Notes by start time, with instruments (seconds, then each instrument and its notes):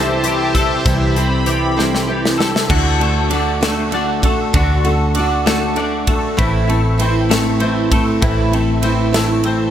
Already playing: fingered electric bass C2, steel-string acoustic guitar C3 E3 G3 E4 A4, clean electric guitar C3 C4 G4, analog synth pad G4 C5 E5 A5
0.23 steel-string acoustic guitar E3 G3 E4 A4, clean electric guitar G4, closed hi-hat
0.55 steel-string acoustic guitar G3 E4 A4, kick, closed hi-hat
0.85 fingered electric bass C2, steel-string acoustic guitar C3 E3 G3 E4 A4, analog synth pad B5, kick, closed hi-hat
1.14 steel-string acoustic guitar G3 E4 A4, clean electric guitar C4, closed hi-hat
1.46 steel-string acoustic guitar E3 G3 E4 A4, clean electric guitar G4, closed hi-hat
1.76 steel-string acoustic guitar C3 E3 G3 E4 A4, clean electric guitar C4, snare
1.95 snare
2.07 steel-string acoustic guitar E3 G3 E4 A4, clean electric guitar G4
2.25 snare
2.37 steel-string acoustic guitar G3 E4 A4, snare
2.56 snare
2.68 fingered electric bass D2, steel-string acoustic guitar D3 A3 D4 F#4, kick, crash
2.98 steel-string acoustic guitar A3 D4 F#4, ride
3.30 steel-string acoustic guitar D3 A3 D4 F#4, ride
3.61 steel-string acoustic guitar D3 A3 D4 F#4, snare, ride
3.91 steel-string acoustic guitar D3 A3 D4 F#4, ride
4.22 steel-string acoustic guitar A3 D4 F#4, kick, ride
4.53 fingered electric bass D2, steel-string acoustic guitar D3 A3 D4 F#4, kick, ride
4.84 steel-string acoustic guitar A3 D4 F#4, ride
5.15 steel-string acoustic guitar D3 A3 D4, ride
5.19 steel-string acoustic guitar F#4
5.46 steel-string acoustic guitar D3 A3 D4 F#4, snare, ride
5.76 steel-string acoustic guitar D3 A3 D4 F#4, ride
6.07 steel-string acoustic guitar A3 D4 F#4, kick, ride
6.37 fingered electric bass A1, steel-string acoustic guitar A2 E3 A3 C4 E4, kick, ride
6.67 steel-string acoustic guitar A3 C4 E4, ride
6.98 steel-string acoustic guitar E3 A3 C4 E4, ride
7.29 steel-string acoustic guitar A2 E3 A3 C4 E4, snare, ride
7.60 steel-string acoustic guitar E3 A3 C4 E4, ride
7.90 steel-string acoustic guitar A3 C4 E4, kick, ride
8.21 fingered electric bass A1, steel-string acoustic guitar A2 E3 A3 C4 E4, kick, ride
8.52 steel-string acoustic guitar A3 C4 E4, ride
8.82 steel-string acoustic guitar E3 A3 C4 E4, ride
9.13 steel-string acoustic guitar A2 E3 A3 C4 E4, snare, ride
9.44 steel-string acoustic guitar E3 A3 C4 E4, ride